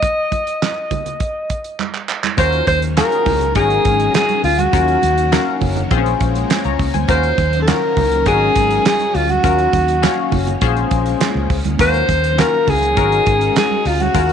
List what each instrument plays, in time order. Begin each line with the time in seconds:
Already playing: alto saxophone D#5
0.02 kick, closed hi-hat, muted conga
0.32 kick, closed hi-hat, muted conga
0.47 closed hi-hat
0.62 snare, clap, high conga
0.91 kick, closed hi-hat, muted conga, low conga
1.06 closed hi-hat, low conga
1.20 kick, closed hi-hat
1.50 kick, closed hi-hat
1.64 closed hi-hat
1.79 clap, high conga
1.95 clap
2.09 clap
2.24 clap, high conga
2.37 fingered electric bass D#2, string machine D#3 F#3 A#3 C#4, analog polysynth C#4 F4 F#4 A#4, alto saxophone C5, kick, closed hi-hat, muted conga
2.52 closed hi-hat
2.67 fingered electric bass D#2, alto saxophone C5, kick, closed hi-hat, muted conga
2.82 closed hi-hat
2.96 analog polysynth C#4 F4 F#4 G#4, alto saxophone A#4, snare, clap, closed hi-hat, high conga
3.12 closed hi-hat
3.26 fingered electric bass C#2, kick, open hi-hat, muted conga, low conga
3.41 closed hi-hat
3.55 fingered electric bass G#1, string machine G#3, analog polysynth C#4 D#4 F#4 A#4, alto saxophone G#4, kick, closed hi-hat, muted conga
3.70 closed hi-hat
3.85 fingered electric bass G#1, kick, closed hi-hat
4.00 closed hi-hat
4.14 alto saxophone G#4, snare, clap, closed hi-hat, high conga
4.29 closed hi-hat, high conga
4.44 fingered electric bass D2, alto saxophone F4, open hi-hat
4.58 alto saxophone F#4, closed hi-hat, high conga
4.73 fingered electric bass D#2, string machine D#3 A#3, analog polysynth C#4 F4 F#4 A#4, kick, closed hi-hat, muted conga
4.88 closed hi-hat
5.02 fingered electric bass D#2, closed hi-hat, muted conga
5.18 closed hi-hat
5.32 analog polysynth C#4 F#4 A#4 F5, snare, clap, closed hi-hat, high conga
5.61 fingered electric bass F#1, kick, open hi-hat, muted conga, low conga
5.76 closed hi-hat, low conga
5.91 fingered electric bass A#1, string machine G#3 C#4, analog polysynth C4 F4 G#4 C5, kick, closed hi-hat
5.97 analog polysynth C#4
6.06 closed hi-hat
6.20 fingered electric bass A#1, kick, closed hi-hat
6.35 closed hi-hat
6.50 analog polysynth C5 G#5, snare, clap, closed hi-hat, high conga
6.64 fingered electric bass C#2, analog polysynth C#5 A#5, closed hi-hat, high conga
6.79 fingered electric bass C#2, kick, open hi-hat
6.94 fingered electric bass D2, analog polysynth C5 G#5, closed hi-hat, high conga
7.08 fingered electric bass D#2, string machine D#3 F#3, analog polysynth C#4 F4 F#4 A#4, alto saxophone C5, kick, closed hi-hat, muted conga
7.23 closed hi-hat
7.38 fingered electric bass D#2, kick, closed hi-hat, muted conga
7.53 closed hi-hat
7.62 alto saxophone A4
7.67 analog polysynth C#4 F4 F#4 A#4, alto saxophone A#4, snare, clap, closed hi-hat, high conga
7.97 fingered electric bass C#2, kick, open hi-hat, muted conga, low conga
8.12 closed hi-hat
8.26 fingered electric bass G#1, string machine G#3, analog polysynth C#4 D#4 F#4 A#4, alto saxophone G#4, kick, closed hi-hat
8.55 fingered electric bass G#1, kick, closed hi-hat
8.70 closed hi-hat
8.85 alto saxophone G#4, snare, clap, closed hi-hat, high conga
9.00 closed hi-hat, high conga
9.15 fingered electric bass D2, alto saxophone F4, open hi-hat
9.29 alto saxophone F#4, closed hi-hat, high conga
9.43 fingered electric bass D#2, string machine D#3 A#3, analog polysynth C#4 F4 F#4 A#4, kick, closed hi-hat, muted conga
9.58 closed hi-hat
9.73 fingered electric bass D#2, kick, closed hi-hat, muted conga
9.88 closed hi-hat
10.02 analog polysynth C#4 F#4 C#5 F5, snare, clap, closed hi-hat, high conga
10.32 fingered electric bass F#1, kick, open hi-hat, muted conga, low conga
10.47 closed hi-hat, low conga
10.61 fingered electric bass A#1, string machine G#3 C#4, analog polysynth C#4 F4 G#4 C5, kick, closed hi-hat, muted conga
10.77 closed hi-hat
10.91 fingered electric bass A#1, kick, closed hi-hat
11.06 closed hi-hat
11.21 snare, clap, closed hi-hat, high conga
11.35 fingered electric bass C#2, high conga
11.50 fingered electric bass C#2, kick, open hi-hat
11.65 fingered electric bass D2, closed hi-hat, high conga
11.78 fingered electric bass D#2, string machine D#3 F#3, analog polysynth C#4 F4 F#4 A#4, alto saxophone C5, kick, closed hi-hat, muted conga
11.94 closed hi-hat
12.08 fingered electric bass D#2, kick, closed hi-hat, muted conga
12.24 closed hi-hat
12.38 analog polysynth C#4 F4 F#4 A#4, alto saxophone A#4, snare, clap, closed hi-hat, high conga
12.67 fingered electric bass C#2, alto saxophone G#4, kick, open hi-hat, muted conga, low conga
12.83 closed hi-hat
12.97 fingered electric bass G#1, string machine G#3 F#4, analog polysynth C#4 D#4 F#4 A#4, kick, closed hi-hat
13.12 closed hi-hat
13.26 fingered electric bass G#1, kick, closed hi-hat
13.41 closed hi-hat
13.56 alto saxophone G#4, snare, clap, closed hi-hat, high conga
13.71 high conga
13.85 fingered electric bass D2, alto saxophone F4, open hi-hat
14.00 alto saxophone F#4, closed hi-hat, high conga
14.14 fingered electric bass D#2, string machine D#3 A#3, analog polysynth C#4 F4 F#4 A#4, kick, closed hi-hat, muted conga
14.29 closed hi-hat